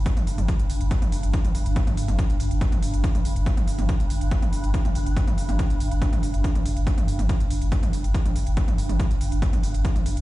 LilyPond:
<<
  \new Staff \with { instrumentName = "Synth drone" } { \clef bass \time 4/4 \key c \dorian \tempo 4 = 141 g,1~ | g,1~ | g,1~ | g,1~ |
g,1~ | g,1 | }
  \new Staff \with { instrumentName = "Sub bass" } { \clef bass \time 4/4 \key c \dorian r16 g,,16 r16 g,,16 r8 g,,16 g,,16 r16 g,,16 r16 g,,16 r8 g,,16 g,,16 | r16 g,,16 r16 g,,16 r8 g,,16 g,,16 r16 g,,16 r16 g,,16 r8 g,,16 g,,16 | r16 g,,16 r16 g,,16 r8 g,,16 g,,16 r16 g,,16 r16 g,,16 r8 g,,16 g,,16 | r16 g,,16 r16 g,,16 r8 g,,16 g,,16 r16 g,,16 r16 g,,16 r8 g,,16 g,,16 |
r16 g,,16 r16 g,,16 r8 g,,16 g,,16 r16 g,,16 r16 g,,16 r8 g,,16 g,,16 | r16 g,,16 r16 g,,16 r8 g,,16 g,,16 r16 g,,16 r16 g,,16 r8 g,,16 g,,16 | }
  \new DrumStaff \with { instrumentName = "Drums" } \drummode { \time 4/4 <hh bd>16 <hh toml>16 hho16 <hh toml>16 <hh bd>16 hh16 hho16 hh16 <hh bd>16 <hh toml>16 hho16 hh16 <hh bd>16 <hh toml>16 hho16 hh16 | <hh bd>16 <hh toml>16 hho16 <hh toml>16 <hh bd>16 hh16 hho16 hh16 <hh bd>16 <hh toml>16 hho16 hh16 <hh bd>16 <hh toml>16 hho16 hh16 | <hh bd>16 <hh toml>16 hho16 <hh toml>16 <hh bd>16 hh16 hho16 hh16 <hh bd>16 <hh toml>16 hho16 hh16 <hh bd>16 <hh toml>16 hho16 hh16 | <hh bd>16 <hh toml>16 hho16 <hh toml>16 <hh bd>16 hh16 hho16 hh16 <hh bd>16 <hh toml>16 hho16 hh16 <hh bd>16 <hh toml>16 hho16 hh16 |
<hh bd>16 <hh toml>16 hho16 <hh toml>16 <hh bd>16 hh16 hho16 hh16 <hh bd>16 <hh toml>16 hho16 hh16 <hh bd>16 <hh toml>16 hho16 hh16 | <hh bd>16 <hh toml>16 hho16 <hh toml>16 <hh bd>16 hh16 hho16 hh16 <hh bd>16 <hh toml>16 hho16 hh16 <hh bd>16 <hh toml>16 hho16 hh16 | }
>>